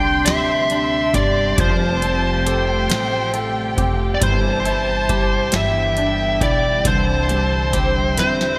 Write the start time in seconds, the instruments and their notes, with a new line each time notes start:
Already playing: upright bass C2, grand piano C3 G3 D4, string section C3 D3 G3 D4 G4, clean electric guitar C4 D4 G4, lead electric guitar G5, violin section C6
0.26 upright bass D2, clean electric guitar C4, grand piano G4, lead electric guitar E5, snare, closed hi-hat
0.70 grand piano D4, clean electric guitar D4, closed hi-hat
1.14 upright bass G1, grand piano G3, clean electric guitar G4, lead electric guitar D5, kick, closed hi-hat
1.58 upright bass F1, clean electric guitar F3, grand piano F3, string section A3 F4, lead electric guitar C5, violin section A5, kick, closed hi-hat
2.02 clean electric guitar C4, grand piano C4, closed hi-hat
2.46 clean electric guitar G4, grand piano A4, violin section G5, closed hi-hat
2.90 upright bass A1, clean electric guitar A3, grand piano C4, snare, closed hi-hat
3.33 clean electric guitar C4, grand piano A4, closed hi-hat
3.77 upright bass F1, grand piano C4, clean electric guitar G4, kick, closed hi-hat
4.15 lead electric guitar D5
4.21 upright bass G1, clean electric guitar E3, string section E3 E4, grand piano G3, lead electric guitar C5, violin section A5, kick, closed hi-hat
4.65 grand piano E4, clean electric guitar E4, closed hi-hat
5.09 grand piano G3, clean electric guitar G4, kick, closed hi-hat
5.52 upright bass G1, string section D3 G3 B3, clean electric guitar E3, grand piano G3, violin section G5, snare, closed hi-hat
5.56 lead electric guitar E5
5.97 grand piano D4, clean electric guitar D4, closed hi-hat
6.41 upright bass B1, grand piano E4, clean electric guitar G4, lead electric guitar D5, kick, closed hi-hat
6.85 upright bass C2, grand piano D3, string section D3 C4, clean electric guitar E3, lead electric guitar C5, violin section A5, kick, closed hi-hat
7.29 grand piano G3, clean electric guitar D4, closed hi-hat
7.73 grand piano C4, clean electric guitar G4, violin section G5, kick, snare, closed hi-hat
8.17 upright bass E2, clean electric guitar C4, grand piano E4, lead electric guitar C5, violin section E5, snare, closed hi-hat
8.41 snare